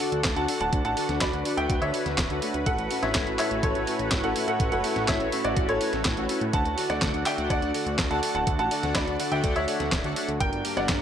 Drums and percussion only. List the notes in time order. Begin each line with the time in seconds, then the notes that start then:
0.00 open hi-hat
0.12 closed hi-hat
0.24 kick, snare, clap, closed hi-hat
0.36 closed hi-hat
0.48 open hi-hat
0.61 closed hi-hat
0.73 kick, closed hi-hat
0.85 closed hi-hat
0.97 open hi-hat
1.09 snare, closed hi-hat
1.21 kick, snare, clap, closed hi-hat
1.33 closed hi-hat
1.45 open hi-hat
1.58 closed hi-hat
1.70 kick, closed hi-hat
1.82 closed hi-hat
1.94 open hi-hat
2.06 snare, closed hi-hat
2.18 kick, snare, clap, closed hi-hat
2.30 closed hi-hat
2.42 open hi-hat
2.54 closed hi-hat
2.66 kick, closed hi-hat
2.78 closed hi-hat
2.91 open hi-hat
3.03 snare, closed hi-hat
3.15 kick, snare, clap, closed hi-hat
3.27 closed hi-hat
3.39 clap, open hi-hat
3.51 closed hi-hat
3.63 kick, closed hi-hat
3.75 closed hi-hat
3.87 open hi-hat
3.99 closed hi-hat
4.11 kick, snare, clap, closed hi-hat
4.24 closed hi-hat
4.36 open hi-hat
4.48 closed hi-hat
4.60 kick, closed hi-hat
4.72 closed hi-hat
4.84 open hi-hat
4.96 snare, closed hi-hat
5.08 kick, snare, clap, closed hi-hat
5.20 closed hi-hat
5.32 open hi-hat
5.44 closed hi-hat
5.57 kick, closed hi-hat
5.69 closed hi-hat
5.81 open hi-hat
5.93 snare, closed hi-hat
6.05 kick, snare, clap, closed hi-hat
6.17 closed hi-hat
6.29 open hi-hat
6.41 closed hi-hat
6.53 kick, closed hi-hat
6.65 closed hi-hat
6.78 open hi-hat
6.90 snare, closed hi-hat
7.02 kick, snare, clap, closed hi-hat
7.14 closed hi-hat
7.26 clap, open hi-hat
7.38 closed hi-hat
7.50 kick, closed hi-hat
7.62 closed hi-hat
7.74 open hi-hat
7.87 closed hi-hat
7.99 kick, snare, clap, closed hi-hat
8.11 closed hi-hat
8.23 open hi-hat
8.35 closed hi-hat
8.47 kick, closed hi-hat
8.59 closed hi-hat
8.71 open hi-hat
8.83 snare, closed hi-hat
8.95 kick, snare, clap, closed hi-hat
9.08 closed hi-hat
9.20 open hi-hat
9.32 closed hi-hat
9.44 kick, closed hi-hat
9.56 closed hi-hat
9.68 open hi-hat
9.80 snare, closed hi-hat
9.92 kick, snare, clap, closed hi-hat
10.04 closed hi-hat
10.16 open hi-hat
10.29 closed hi-hat
10.40 kick, closed hi-hat
10.53 closed hi-hat
10.65 open hi-hat
10.77 snare, closed hi-hat
10.89 kick, snare, clap, closed hi-hat